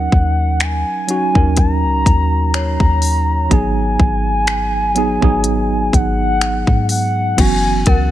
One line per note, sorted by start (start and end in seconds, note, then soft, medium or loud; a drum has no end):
0.00 0.70 F#3 medium
0.00 0.71 C#4 medium
0.00 0.71 D#4 medium
0.00 0.72 A#4 medium
0.00 0.64 F#5 loud
0.12 0.84 D#2 loud
0.12 kick medium
0.60 1.60 G#5 loud
0.60 finger snap loud
0.60 closed hi-hat medium
1.08 1.26 F#3 medium
1.08 1.27 C#4 medium
1.08 1.27 D#4 medium
1.08 1.28 F#4 medium
1.08 closed hi-hat medium
1.34 1.85 D#2 loud
1.34 2.67 F#3 medium
1.34 2.67 C#4 medium
1.34 2.68 D#4 medium
1.34 2.68 A#4 medium
1.34 kick medium
1.57 2.55 A#5 loud
1.57 kick medium
1.57 closed hi-hat medium
1.84 2.05 C#2 loud
2.06 2.78 D#2 loud
2.06 kick loud
2.06 closed hi-hat medium
2.54 3.96 C#5 medium
2.54 finger snap medium
2.54 closed hi-hat medium
2.80 3.48 D#2 loud
2.80 kick loud
3.02 open hi-hat medium
3.50 3.98 G#1 loud
3.50 4.50 F#3 medium
3.50 4.51 B3 medium
3.50 4.51 D#4 medium
3.50 4.52 G#4 medium
3.50 5.93 G#5 loud
3.50 kick medium
3.50 closed hi-hat medium
4.00 5.18 G#1 loud
4.00 kick loud
4.47 finger snap loud
4.47 closed hi-hat medium
4.95 5.14 F#3 medium
4.95 5.14 B3 medium
4.95 5.15 D#4 medium
4.95 5.15 G#4 loud
4.95 closed hi-hat medium
5.21 5.90 G#1 loud
5.21 6.54 F#3 medium
5.21 6.54 B3 medium
5.21 6.55 D#4 medium
5.21 6.55 G#4 loud
5.21 kick medium
5.44 closed hi-hat medium
5.93 6.65 G#1 loud
5.93 6.86 F#5 loud
5.93 kick loud
5.93 closed hi-hat medium
6.41 finger snap medium
6.41 closed hi-hat medium
6.67 7.35 G#2 loud
6.67 kick loud
6.89 7.41 F#5 loud
6.89 open hi-hat medium
7.37 7.85 F#1 loud
7.37 8.11 E3 medium
7.37 8.11 F#3 medium
7.37 8.11 B3 medium
7.37 8.11 C#4 medium
7.37 8.11 F#4 medium
7.37 7.87 G#5 loud
7.37 kick loud
7.37 closed hi-hat medium
7.37 crash loud
7.86 8.11 C#2 loud
7.86 8.11 A#4 medium
7.86 8.11 F#5 loud
7.86 kick loud
7.86 closed hi-hat medium